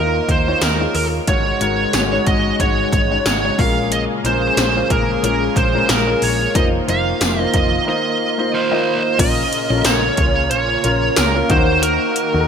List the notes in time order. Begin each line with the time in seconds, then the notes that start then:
Already playing: D#2 D#3 A#3 D#4 F4 A#4 D#5
0.29 D#2 C5, kick, closed hi-hat
0.47 A#3 D#4 F4 C#5
0.61 D#2 A#4, snare, closed hi-hat, tambourine
0.79 A#3 D#4 F4 G#4
0.95 D#2 A#4, open hi-hat
1.27 G#1 G#2 C#3 G#3 D#4 F#4 C#5, kick, closed hi-hat
1.60 G#1 G#3 D#4 F#4 A#4 C#5, closed hi-hat
1.93 G#1, snare, closed hi-hat, tambourine
2.12 G#3 D#4 F#4 C#5
2.27 G#1 D#5, kick, closed hi-hat
2.59 G#1 G#3 D#4 F#4 C#5, kick, closed hi-hat
2.92 G#1, kick, closed hi-hat
3.10 G#3 D#4 F#4 C#5
3.25 G#1 C#5, snare, closed hi-hat, tambourine
3.44 G#3 D#4 F#4 C#5
3.58 A#1 A#2 G#3 A#3 C#4 F4 G#4 A#4 F5, kick, open hi-hat
3.92 D#5, closed hi-hat
4.24 A#1 G#3 C#4 F4 A#4 C5, closed hi-hat
4.57 A#1, snare, closed hi-hat, tambourine
4.75 G#3 C#4 F4 G#4
4.90 A#1 A#4, kick, closed hi-hat
5.23 A#1 G#3 C#4 F4 A#4, closed hi-hat
5.56 A#1 C5, kick, closed hi-hat
5.74 G#3 C#4 F4 A#4
5.89 A#1 A#4, snare, closed hi-hat, tambourine
6.06 G#3 C#4 F4 A#4
6.22 A#1 C#5, open hi-hat
6.54 F1 D#3 A#3 D#4 F4 C5 D#5, kick, closed hi-hat
6.87 F1 A#3 D#4 F4 C5 F5, closed hi-hat
7.21 F1, snare, closed hi-hat, tambourine
7.38 A#3 D#4 F4 C5 D#5
7.54 F1 D#5, kick, closed hi-hat
7.86 A#3 D#4 F4 C5 D#5
8.38 A#3 D#4 F4 C5
8.54 A#4 C5
8.70 A#3 D#4 F4 D#5
9.19 A#1 A#2 C#3 A#3 C#4 F4 A#4 D#5, kick, closed hi-hat, crash
9.53 closed hi-hat
9.70 A#1 C#4 F4 A4
9.77 A#4
9.85 A#1 C#5, snare, closed hi-hat, tambourine
10.17 C#2, kick, closed hi-hat
10.51 A#1 C#5, closed hi-hat
10.84 A#1 C#4 F4 A#4, closed hi-hat
11.16 C#2 A#4, snare, closed hi-hat, tambourine
11.34 C#4 F4 A#4
11.49 D#2 D#3 D#4 F#4 A#4 C5, kick, closed hi-hat
11.83 A#4, closed hi-hat
12.16 closed hi-hat
12.33 D#2 D#4 F#4 A4
12.40 A#4